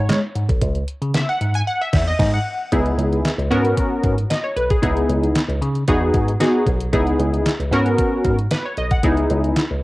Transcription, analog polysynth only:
0.00 0.19 C#5 medium
1.16 1.29 E5 medium
1.29 1.56 F#5 medium
1.55 1.61 G#5 loud
1.67 1.82 F#5 medium
1.81 2.06 E5 medium
2.07 2.35 D#5 loud
2.34 2.70 F#5 medium
2.72 3.30 B3 medium
2.72 3.30 D#4 medium
2.72 3.31 E4 medium
2.72 3.31 G#4 medium
3.50 4.15 B3 loud
3.50 4.15 C#4 medium
3.50 4.15 F#4 medium
3.50 4.15 A#4 loud
4.30 4.43 D#5 medium
4.44 4.56 C#5 medium
4.56 4.70 B4 medium
4.71 4.82 G#4 medium
4.82 5.41 B3 medium
4.82 5.41 D#4 medium
4.82 5.41 E4 medium
4.82 5.41 G#4 medium
5.88 6.31 B3 medium
5.88 6.31 D#4 medium
5.88 6.31 F#4 medium
5.88 6.31 G#4 loud
6.40 6.70 B3 medium
6.40 6.70 D#4 medium
6.40 6.70 F#4 medium
6.40 6.70 G#4 loud
6.93 7.51 B3 medium
6.93 7.51 D#4 medium
6.93 7.51 E4 medium
6.93 7.51 G#4 loud
7.72 8.36 B3 loud
7.72 8.36 C#4 medium
7.72 8.36 F#4 loud
7.72 8.36 A#4 loud
8.51 8.65 B4 medium
8.65 8.77 C#5 medium
8.78 8.91 D#5 medium
8.91 9.16 F#5 medium
9.03 9.62 B3 medium
9.03 9.62 D#4 medium
9.03 9.62 E4 medium
9.03 9.62 G#4 medium

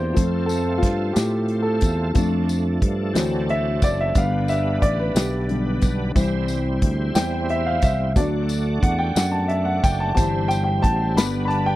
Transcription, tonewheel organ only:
0.00 0.16 E3 medium
0.00 0.15 A#3 soft
0.00 0.14 C4 medium
0.00 0.19 G4 medium
0.15 2.12 A3 soft
0.15 2.12 C4 medium
0.15 2.12 F4 medium
0.15 0.22 G#4 soft
0.22 2.14 A4 medium
2.15 3.15 F3 medium
2.15 3.16 A3 medium
2.15 3.12 D4 medium
2.15 3.13 A4 medium
3.13 4.15 F#3 medium
3.13 4.15 C4 medium
3.13 4.14 D4 medium
3.13 4.15 A4 medium
4.15 6.12 G3 medium
4.15 6.12 B3 medium
4.15 6.12 D4 medium
4.15 6.12 B4 medium
6.16 8.12 G3 medium
6.16 8.12 C4 medium
6.16 8.12 E4 medium
6.16 8.12 C5 medium
8.16 10.13 A3 medium
8.16 10.13 D4 medium
8.16 10.13 F#4 medium
8.16 10.13 D5 medium
10.18 11.18 G3 medium
10.18 11.18 C4 medium
10.18 11.18 E4 medium
10.18 11.18 C5 medium
11.19 11.76 G3 medium
11.19 11.76 B3 medium
11.19 11.76 D4 medium
11.19 11.25 A4 medium
11.26 11.76 B4 medium

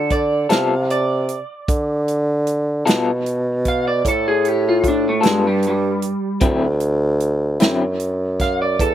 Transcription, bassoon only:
0.00 0.47 D3 medium
0.50 1.39 C3 medium
1.68 2.84 D3 medium
2.86 4.01 B2 medium
4.05 5.20 A2 medium
5.23 6.12 G2 medium
6.41 7.56 D2 medium
7.61 8.76 F#2 medium
8.79 8.95 E2 medium

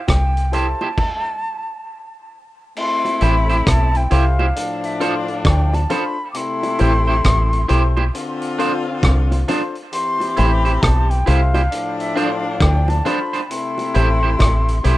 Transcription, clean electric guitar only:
0.53 0.66 E4 medium
0.53 0.66 G4 medium
0.53 0.66 C5 medium
0.82 0.88 E4 medium
0.82 0.87 G4 medium
0.82 0.87 C5 medium
3.21 3.34 E4 medium
3.21 3.34 G4 medium
3.21 3.34 C5 medium
3.49 3.56 E4 medium
3.49 3.56 G4 medium
3.49 3.55 C5 medium
4.11 4.23 E4 medium
4.11 4.24 G4 loud
4.11 4.24 C5 medium
4.39 4.46 E4 medium
4.39 4.45 G4 medium
4.39 4.45 C5 medium
5.00 5.13 F4 medium
5.00 5.13 A4 medium
5.00 5.14 C5 loud
5.90 6.02 F4 medium
5.90 6.03 A4 medium
5.90 6.03 C5 medium
6.79 6.92 E4 medium
6.79 6.92 G4 medium
6.79 6.92 C5 medium
7.08 7.14 E4 medium
7.08 7.14 G4 medium
7.08 7.13 C5 medium
7.68 7.81 E4 medium
7.68 7.82 G4 medium
7.68 7.82 C5 medium
7.97 8.03 E4 medium
7.97 8.03 G4 medium
7.97 8.03 C5 medium
8.58 8.71 D4 medium
8.58 8.71 F4 loud
8.58 8.72 C5 loud
9.48 9.61 D4 medium
9.48 9.61 F4 loud
9.48 9.61 C5 loud
10.37 10.49 E4 medium
10.37 10.50 G4 medium
10.37 10.50 C5 medium
10.65 10.72 E4 medium
10.65 10.71 G4 medium
10.65 10.71 C5 medium
11.26 11.39 E4 medium
11.26 11.39 G4 medium
11.26 11.40 C5 medium
11.54 11.61 E4 medium
11.54 11.61 G4 medium
11.54 11.61 C5 medium
12.16 12.28 D4 medium
12.16 12.29 F4 medium
12.16 12.29 C5 loud
13.05 13.18 D4 medium
13.05 13.18 F4 medium
13.05 13.19 C5 medium
13.33 13.40 D4 medium
13.33 13.40 F4 medium
13.33 13.39 C5 medium
13.94 14.07 E4 medium
13.94 14.07 G4 medium
13.94 14.08 C5 loud
14.23 14.29 E4 medium
14.23 14.29 G4 medium
14.23 14.29 C5 medium
14.84 14.97 E4 medium
14.84 14.97 G4 loud
14.84 14.97 C5 medium

